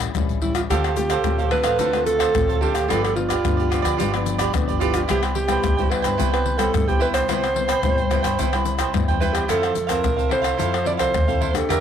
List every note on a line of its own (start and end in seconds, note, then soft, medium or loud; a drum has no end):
0.00 0.13 A2 medium
0.00 0.11 G3 medium
0.00 0.11 C#4 medium
0.00 0.12 E4 medium
0.00 pandeiro medium
0.00 tamborim medium
0.00 shaker medium
0.00 surdo soft
0.15 0.27 E2 medium
0.15 0.67 E3 medium
0.15 0.38 G3 medium
0.15 0.38 C#4 medium
0.15 0.39 E4 medium
0.15 pandeiro medium
0.15 tamborim medium
0.15 shaker medium
0.15 surdo loud
0.29 0.64 A1 medium
0.29 pandeiro soft
0.29 shaker soft
0.42 0.66 G3 medium
0.42 0.66 C#4 medium
0.42 0.55 E4 medium
0.42 0.66 E4 medium
0.42 pandeiro medium
0.55 0.62 F4 medium
0.55 pandeiro medium
0.55 tamborim medium
0.55 shaker medium
0.55 surdo soft
0.70 1.17 D2 medium
0.70 1.23 D3 medium
0.70 0.87 A3 medium
0.70 0.87 C4 medium
0.70 0.82 D4 medium
0.70 0.87 F4 medium
0.70 0.95 G4 medium
0.70 0.83 A4 medium
0.70 0.83 C5 medium
0.70 0.83 F5 medium
0.70 pandeiro medium
0.70 tamborim medium
0.70 shaker medium
0.70 surdo medium
0.84 0.96 A4 soft
0.84 0.96 C5 soft
0.84 0.96 F5 soft
0.84 pandeiro soft
0.84 tamborim medium
0.84 shaker soft
0.96 1.14 A3 medium
0.96 1.14 C4 medium
0.96 1.14 F4 medium
0.96 1.48 G4 loud
0.96 muted cavaquinho stroke soft
0.96 pandeiro medium
0.96 shaker medium
1.10 1.38 A4 medium
1.10 1.37 C5 medium
1.10 1.37 F5 medium
1.10 pandeiro medium
1.10 tamborim medium
1.10 shaker medium
1.10 surdo soft
1.24 1.59 D2 medium
1.24 1.77 A2 medium
1.24 1.41 A3 medium
1.24 1.42 C4 medium
1.24 1.41 F4 medium
1.24 pandeiro medium
1.24 tamborim medium
1.24 shaker medium
1.24 surdo loud
1.38 1.51 A4 soft
1.38 1.51 C5 soft
1.38 1.51 F5 soft
1.38 pandeiro soft
1.38 shaker soft
1.51 1.68 A3 medium
1.51 1.68 C4 medium
1.51 1.64 D4 soft
1.51 1.69 F4 medium
1.51 1.65 A4 medium
1.51 2.02 B4 loud
1.51 1.64 C5 soft
1.51 1.63 F5 medium
1.51 pandeiro medium
1.51 tamborim medium
1.51 surdo soft
1.64 1.77 A1 medium
1.64 1.78 A4 medium
1.64 1.78 C5 medium
1.64 1.77 F5 medium
1.64 pandeiro medium
1.64 tamborim medium
1.64 shaker medium
1.79 2.27 D2 medium
1.79 2.32 D3 medium
1.79 1.89 A3 medium
1.79 1.89 C4 medium
1.79 1.92 D4 medium
1.79 1.89 F4 medium
1.79 1.92 A4 medium
1.79 1.93 C5 medium
1.79 1.92 F5 medium
1.79 pandeiro medium
1.79 shaker medium
1.79 surdo medium
1.93 2.30 A3 medium
1.93 2.31 C4 medium
1.93 2.31 F4 medium
1.93 2.20 A4 soft
1.93 2.19 C5 soft
1.93 2.18 F5 soft
1.93 pandeiro soft
1.93 tamborim medium
1.93 shaker soft
2.06 2.63 A4 loud
2.06 pandeiro medium
2.06 shaker medium
2.19 2.34 A4 soft
2.19 2.33 C5 medium
2.19 2.32 F5 medium
2.19 pandeiro medium
2.19 tamborim medium
2.19 shaker medium
2.19 surdo soft
2.35 2.47 A1 medium
2.35 2.87 A2 medium
2.35 2.70 A3 medium
2.35 2.70 C4 medium
2.35 2.71 F4 medium
2.35 muted cavaquinho stroke soft
2.35 pandeiro medium
2.35 tamborim medium
2.35 shaker medium
2.35 surdo loud
2.48 2.84 D2 medium
2.48 2.61 A4 soft
2.48 2.61 C5 soft
2.48 2.60 F5 soft
2.48 pandeiro soft
2.48 shaker soft
2.61 2.74 D4 medium
2.61 2.90 G4 medium
2.61 2.74 A4 medium
2.61 2.74 C5 medium
2.61 2.73 F5 medium
2.61 pandeiro medium
2.61 surdo soft
2.74 2.88 A4 soft
2.74 2.88 C5 soft
2.74 2.87 F5 soft
2.74 pandeiro medium
2.74 tamborim medium
2.74 shaker medium
2.74 surdo soft
2.88 3.36 G1 medium
2.88 3.42 G2 medium
2.88 3.12 F3 medium
2.88 3.13 B3 medium
2.88 3.13 D4 medium
2.88 3.01 F4 medium
2.88 3.02 G4 medium
2.88 3.03 A4 loud
2.88 3.02 B4 medium
2.88 3.02 D5 medium
2.88 pandeiro medium
2.88 tamborim medium
2.88 shaker medium
2.88 surdo medium
3.03 3.15 G4 soft
3.03 3.15 A4 medium
3.03 3.15 B4 soft
3.03 3.15 D5 soft
3.03 pandeiro soft
3.03 tamborim medium
3.03 shaker soft
3.16 3.33 F3 medium
3.16 3.33 B3 medium
3.16 3.33 D4 medium
3.16 4.22 F4 medium
3.16 muted cavaquinho stroke soft
3.16 pandeiro medium
3.29 3.57 G4 medium
3.29 3.56 B4 medium
3.29 3.56 D5 medium
3.29 pandeiro medium
3.29 tamborim medium
3.29 shaker medium
3.29 surdo soft
3.45 3.80 G1 medium
3.45 3.97 D3 medium
3.45 3.68 F3 soft
3.45 3.68 B3 medium
3.45 3.68 D4 medium
3.45 pandeiro medium
3.45 tamborim medium
3.45 shaker medium
3.45 surdo loud
3.57 3.70 G4 soft
3.57 3.71 B4 soft
3.57 3.70 D5 soft
3.57 pandeiro soft
3.57 shaker soft
3.70 3.98 F3 medium
3.70 3.98 B3 medium
3.70 3.98 D4 medium
3.70 3.83 F4 soft
3.70 3.84 G4 soft
3.70 3.83 B4 soft
3.70 3.81 D5 medium
3.70 pandeiro medium
3.70 tamborim medium
3.70 shaker medium
3.70 surdo soft
3.82 3.96 D2 medium
3.82 3.97 G4 medium
3.82 3.97 B4 medium
3.82 3.96 D5 medium
3.82 pandeiro medium
3.82 tamborim medium
3.82 shaker medium
3.97 4.46 G1 medium
3.97 4.51 G2 medium
3.97 4.11 F4 medium
3.97 4.11 G4 medium
3.97 4.11 B4 medium
3.97 4.11 D5 medium
3.97 pandeiro medium
3.97 shaker medium
3.97 surdo medium
4.12 4.50 F3 medium
4.12 4.50 B3 medium
4.12 4.51 D4 medium
4.12 4.38 B4 soft
4.12 4.37 D5 medium
4.12 pandeiro soft
4.12 tamborim medium
4.12 shaker soft
4.26 pandeiro medium
4.26 shaker medium
4.38 4.53 G4 medium
4.38 4.52 B4 medium
4.38 4.52 D5 medium
4.38 pandeiro medium
4.38 tamborim medium
4.38 shaker medium
4.38 surdo soft
4.54 4.66 D2 medium
4.54 5.06 D3 medium
4.54 4.77 F3 medium
4.54 4.77 B3 medium
4.54 4.78 D4 medium
4.54 muted cavaquinho stroke soft
4.54 pandeiro medium
4.54 tamborim medium
4.54 shaker medium
4.54 surdo loud
4.68 5.04 G1 medium
4.68 4.80 G4 soft
4.68 4.80 B4 soft
4.68 4.80 D5 soft
4.68 pandeiro soft
4.68 shaker soft
4.78 5.04 F3 medium
4.78 5.04 B3 medium
4.78 5.05 D4 medium
4.78 4.94 E4 medium
4.78 4.84 F4 medium
4.78 4.93 F4 medium
4.78 4.94 G4 medium
4.78 4.94 B4 medium
4.78 4.92 D5 medium
4.78 pandeiro medium
4.78 shaker medium
4.78 surdo soft
4.93 5.01 F4 medium
4.93 5.08 G4 soft
4.93 5.08 B4 soft
4.93 5.07 D5 medium
4.93 pandeiro medium
4.93 tamborim medium
4.93 shaker medium
4.93 surdo soft
5.08 5.56 C2 medium
5.08 5.61 C3 medium
5.08 5.45 G3 medium
5.08 5.45 B3 medium
5.08 5.21 E4 medium
5.08 5.46 E4 medium
5.08 5.23 G4 medium
5.08 5.22 B4 medium
5.08 5.21 C5 medium
5.08 5.21 G5 medium
5.08 pandeiro medium
5.08 tamborim medium
5.08 shaker medium
5.08 surdo medium
5.22 5.35 B4 soft
5.22 5.34 C5 soft
5.22 5.35 G5 soft
5.22 pandeiro soft
5.22 tamborim medium
5.22 shaker soft
5.35 5.92 G4 medium
5.35 muted cavaquinho stroke soft
5.35 pandeiro medium
5.47 5.72 G3 medium
5.47 5.72 B3 medium
5.47 5.72 E4 medium
5.47 5.76 B4 medium
5.47 5.76 C5 medium
5.47 5.75 G5 medium
5.47 pandeiro medium
5.47 tamborim medium
5.47 shaker medium
5.47 surdo soft
5.63 6.00 C2 medium
5.63 6.16 G2 medium
5.63 pandeiro medium
5.63 tamborim medium
5.63 shaker medium
5.63 surdo loud
5.77 6.15 G3 medium
5.77 6.15 B3 medium
5.77 6.15 E4 medium
5.77 5.90 B4 soft
5.77 5.90 C5 soft
5.77 5.90 G5 medium
5.77 pandeiro soft
5.77 shaker soft
5.90 6.03 E4 soft
5.90 6.32 B4 medium
5.90 6.03 B4 medium
5.90 6.03 C5 soft
5.90 6.01 G5 medium
5.90 pandeiro medium
5.90 tamborim medium
5.90 surdo soft
6.02 6.17 G2 medium
6.02 6.17 B4 medium
6.02 6.17 C5 medium
6.02 6.16 G5 medium
6.02 pandeiro medium
6.02 tamborim medium
6.02 shaker medium
6.17 6.66 C2 medium
6.17 6.71 C3 medium
6.17 6.56 G3 medium
6.17 6.56 B3 medium
6.17 6.31 E4 medium
6.17 6.56 E4 medium
6.17 6.31 B4 medium
6.17 6.31 C5 medium
6.17 6.30 G5 medium
6.17 pandeiro medium
6.17 shaker medium
6.17 surdo medium
6.32 6.57 B4 soft
6.32 6.60 B4 medium
6.32 6.58 C5 soft
6.32 6.57 G5 soft
6.32 pandeiro soft
6.32 tamborim medium
6.32 shaker soft
6.46 pandeiro medium
6.58 6.82 G3 medium
6.58 6.83 B3 medium
6.58 6.83 E4 medium
6.58 6.90 A4 medium
6.58 6.72 B4 medium
6.58 6.73 C5 medium
6.58 6.72 G5 medium
6.58 pandeiro medium
6.58 tamborim medium
6.58 shaker medium
6.58 surdo soft
6.74 7.26 G2 medium
6.74 6.86 G2 loud
6.74 muted cavaquinho stroke soft
6.74 pandeiro medium
6.74 tamborim medium
6.74 shaker medium
6.74 surdo loud
6.88 7.23 C2 medium
6.88 7.25 G3 medium
6.88 7.25 B3 medium
6.88 7.25 E4 medium
6.88 7.01 G4 medium
6.88 7.00 B4 soft
6.88 7.00 C5 soft
6.88 7.00 G5 soft
6.88 pandeiro soft
6.88 shaker soft
7.00 7.13 E4 medium
7.00 7.08 B4 medium
7.00 7.13 B4 medium
7.00 7.14 C5 medium
7.00 7.12 G5 medium
7.00 pandeiro medium
7.00 surdo soft
7.14 7.27 B4 soft
7.14 8.89 C5 loud
7.14 7.28 C5 soft
7.14 7.27 G5 medium
7.14 pandeiro medium
7.14 tamborim medium
7.14 shaker medium
7.14 surdo soft
7.28 7.76 C2 medium
7.28 7.82 C3 medium
7.28 7.45 G3 medium
7.28 7.46 B3 medium
7.28 7.41 E4 medium
7.28 7.46 E4 medium
7.28 7.42 B4 medium
7.28 7.42 C5 medium
7.28 7.41 G5 medium
7.28 pandeiro medium
7.28 tamborim medium
7.28 shaker medium
7.28 surdo medium
7.42 7.53 B4 soft
7.42 7.53 C5 soft
7.42 7.54 G5 soft
7.42 pandeiro soft
7.42 tamborim medium
7.42 shaker soft
7.54 7.73 G3 medium
7.54 7.73 B3 medium
7.54 7.73 E4 medium
7.54 muted cavaquinho stroke soft
7.54 pandeiro medium
7.68 7.96 B4 medium
7.68 7.97 C5 medium
7.68 7.95 G5 medium
7.68 pandeiro medium
7.68 tamborim medium
7.68 shaker medium
7.68 surdo soft
7.83 8.20 C2 medium
7.83 8.36 G2 medium
7.83 8.00 G3 medium
7.83 8.00 B3 medium
7.83 8.01 E4 medium
7.83 pandeiro medium
7.83 tamborim medium
7.83 shaker medium
7.83 surdo loud
7.97 8.11 B4 soft
7.97 8.10 C5 soft
7.97 8.10 G5 soft
7.97 pandeiro soft
7.97 shaker soft
8.10 8.28 G3 medium
8.10 8.28 B3 medium
8.10 8.23 E4 soft
8.10 8.28 E4 medium
8.10 8.23 B4 medium
8.10 8.24 C5 medium
8.10 8.21 G5 medium
8.10 pandeiro medium
8.10 tamborim medium
8.10 shaker medium
8.10 surdo soft
8.23 8.37 G2 medium
8.23 8.38 B4 medium
8.23 8.38 C5 medium
8.23 8.37 G5 medium
8.23 pandeiro medium
8.23 tamborim medium
8.23 shaker medium
8.39 8.86 C2 medium
8.39 8.92 C3 medium
8.39 8.48 G3 medium
8.39 8.48 B3 medium
8.39 8.51 E4 medium
8.39 8.48 E4 medium
8.39 8.52 B4 medium
8.39 8.52 C5 medium
8.39 8.51 G5 medium
8.39 pandeiro medium
8.39 shaker medium
8.39 surdo medium
8.53 8.90 G3 medium
8.53 8.91 E4 medium
8.53 8.78 B4 soft
8.53 8.79 C5 soft
8.53 8.77 G5 soft
8.53 pandeiro soft
8.53 tamborim medium
8.53 shaker soft
8.65 pandeiro medium
8.65 shaker medium
8.78 8.93 B4 medium
8.78 8.93 C5 medium
8.78 8.92 G5 medium
8.78 pandeiro medium
8.78 tamborim medium
8.78 shaker medium
8.78 surdo soft
8.94 9.46 G2 medium
8.94 9.06 G2 medium
8.94 9.17 G3 medium
8.94 9.18 B3 medium
8.94 9.18 E4 medium
8.94 muted cavaquinho stroke soft
8.94 pandeiro medium
8.94 tamborim medium
8.94 shaker medium
8.94 surdo loud
9.08 9.44 E2 medium
9.08 9.21 B4 soft
9.08 9.20 C5 soft
9.08 9.21 G5 medium
9.08 pandeiro soft
9.08 shaker soft
9.20 9.44 G3 medium
9.20 9.45 B3 medium
9.20 9.34 E4 medium
9.20 9.45 E4 medium
9.20 9.35 B4 medium
9.20 9.34 B4 medium
9.20 9.34 C5 medium
9.20 9.32 G5 medium
9.20 pandeiro medium
9.20 shaker medium
9.33 9.48 G4 medium
9.33 9.48 B4 soft
9.33 9.48 C5 soft
9.33 9.47 G5 soft
9.33 pandeiro medium
9.33 tamborim medium
9.33 shaker medium
9.33 surdo soft
9.48 9.73 F2 medium
9.48 10.02 F3 medium
9.48 9.75 C4 medium
9.48 9.61 E4 medium
9.48 9.76 E4 medium
9.48 9.62 A4 medium
9.48 9.90 A4 loud
9.48 9.76 A4 medium
9.48 9.62 C5 medium
9.48 9.61 F5 medium
9.48 pandeiro medium
9.48 tamborim medium
9.48 shaker medium
9.48 surdo medium
9.62 9.74 A4 soft
9.62 9.74 C5 soft
9.62 9.75 F5 soft
9.62 pandeiro soft
9.62 tamborim medium
9.62 shaker soft
9.75 10.00 F2 medium
9.75 muted cavaquinho stroke soft
9.75 pandeiro medium
9.75 shaker medium
9.87 10.27 C4 medium
9.87 10.16 A4 medium
9.87 10.31 A#4 medium
9.87 10.16 C5 medium
9.87 10.15 F5 medium
9.87 pandeiro medium
9.87 tamborim medium
9.87 shaker medium
9.87 surdo soft
9.91 10.28 E4 medium
10.04 10.52 C2 medium
10.04 10.57 C3 medium
10.04 pandeiro medium
10.04 tamborim medium
10.04 shaker medium
10.04 surdo medium
10.16 10.29 A4 soft
10.16 10.29 C5 soft
10.16 10.30 F5 medium
10.16 pandeiro soft
10.16 shaker soft
10.29 10.54 C4 medium
10.29 10.43 E4 soft
10.29 10.55 E4 medium
10.29 10.42 A4 medium
10.29 10.55 A4 medium
10.29 10.42 C5 medium
10.29 10.83 C5 loud
10.29 10.40 F5 medium
10.29 pandeiro medium
10.29 tamborim medium
10.29 surdo soft
10.42 10.57 A4 medium
10.42 10.57 C5 medium
10.42 10.56 F5 medium
10.42 pandeiro medium
10.42 tamborim medium
10.42 shaker medium
10.57 10.95 F2 medium
10.57 11.11 F3 medium
10.57 10.75 C4 medium
10.57 10.71 E4 medium
10.57 10.75 E4 medium
10.57 10.72 A4 medium
10.57 10.76 A4 medium
10.57 10.72 C5 medium
10.57 10.71 F5 medium
10.57 pandeiro medium
10.57 shaker medium
10.57 surdo medium
10.72 10.85 A4 soft
10.72 10.85 C5 soft
10.72 10.85 F5 soft
10.72 pandeiro soft
10.72 tamborim medium
10.72 shaker soft
10.85 11.12 C4 medium
10.85 10.99 E4 soft
10.85 11.12 E4 medium
10.85 10.98 A4 medium
10.85 11.13 A4 medium
10.85 10.97 C5 medium
10.85 10.93 D5 loud
10.85 10.96 F5 medium
10.85 pandeiro medium
10.97 11.12 C2 medium
10.97 11.27 A4 medium
10.97 11.26 C5 medium
10.97 11.58 C5 loud
10.97 11.26 F5 medium
10.97 pandeiro medium
10.97 tamborim medium
10.97 shaker medium
10.97 surdo soft
11.14 11.62 D#2 medium
11.14 11.67 C3 medium
11.14 pandeiro medium
11.14 tamborim medium
11.14 shaker medium
11.14 surdo loud
11.28 11.51 C4 medium
11.28 11.52 E4 medium
11.28 11.52 A4 medium
11.28 11.40 A4 soft
11.28 11.41 C5 soft
11.28 11.41 F5 medium
11.28 pandeiro soft
11.28 shaker soft
11.41 11.53 E4 medium
11.41 11.53 A4 medium
11.41 11.53 C5 medium
11.41 11.54 F5 medium
11.41 pandeiro medium
11.53 11.80 A#3 medium
11.53 11.80 D4 medium
11.53 11.80 G4 medium
11.53 11.70 A4 medium
11.53 muted cavaquinho stroke soft
11.53 pandeiro medium
11.53 tamborim medium
11.53 shaker medium
11.53 surdo soft
11.69 11.80 E2 loud
11.69 11.80 E3 medium
11.69 11.80 G4 medium
11.69 11.80 A#4 medium
11.69 11.80 A#4 loud
11.69 11.80 D5 medium
11.69 11.80 E5 medium
11.69 pandeiro medium
11.69 tamborim medium
11.69 shaker medium
11.69 surdo medium